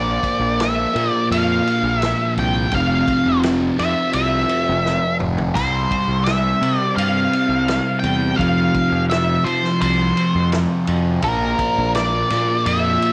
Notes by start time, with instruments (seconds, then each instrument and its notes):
Already playing: fingered electric bass A#1, distorted electric guitar A#2 F3 A#3, lead electric guitar D5
0.23 kick, ride
0.39 fingered electric bass A#1
0.60 lead electric guitar E5, snare, ride
0.93 fingered electric bass A#2, distorted electric guitar A#2 F3 A#3, ride
1.10 lead electric guitar D5
1.31 fingered electric bass F2, lead electric guitar F5, ride
1.67 ride
1.83 fingered electric bass A#1
2.00 lead electric guitar E5, snare, ride
2.37 fingered electric bass C2, lead electric guitar G5, ride
2.71 fingered electric bass F1, distorted electric guitar F2 C3, lead electric guitar F5, kick, ride
2.76 distorted electric guitar F3
3.08 kick, ride
3.25 fingered electric bass F1
3.43 snare, ride
3.78 fingered electric bass F2, distorted electric guitar F2 C3 F3, lead electric guitar E5, snare, ride
4.13 fingered electric bass C2, lead electric guitar E5, ride
4.49 ride
4.69 fingered electric bass F1
4.86 snare
5.20 fingered electric bass F1, mid tom
5.38 floor tom
5.54 fingered electric bass C2, distorted electric guitar C3 G3 C4, lead electric guitar C5, kick, ride, splash
5.91 kick, ride
6.08 fingered electric bass C2
6.24 lead electric guitar E5, snare, ride
6.61 fingered electric bass C3, distorted electric guitar C3 G3 C4, ride
6.79 lead electric guitar D5
6.96 fingered electric bass G2, lead electric guitar F5, ride
7.33 ride
7.49 fingered electric bass C2
7.68 snare, ride
8.00 fingered electric bass E2, lead electric guitar G5, ride
8.36 distorted electric guitar F2 C3, fingered electric bass F2, lead electric guitar F5, kick
8.41 distorted electric guitar F3, ride
8.75 kick, ride
8.92 fingered electric bass F2
9.10 lead electric guitar E5, snare, ride
9.44 distorted electric guitar F2 C3 F3, fingered electric bass F3, lead electric guitar C5, ride
9.65 snare
9.81 fingered electric bass C2, lead electric guitar C5, ride
10.17 ride
10.35 fingered electric bass F2
10.52 snare, ride
10.87 fingered electric bass F2, ride
11.22 fingered electric bass A#1, distorted electric guitar A#2 F3 A#3, lead electric guitar A#4, kick, ride
11.59 kick, ride
11.78 fingered electric bass A#1
11.95 lead electric guitar D5, snare, ride
12.30 fingered electric bass A#2, distorted electric guitar A#2 F3 A#3, snare, ride
12.66 fingered electric bass F2, lead electric guitar E5, ride
13.02 ride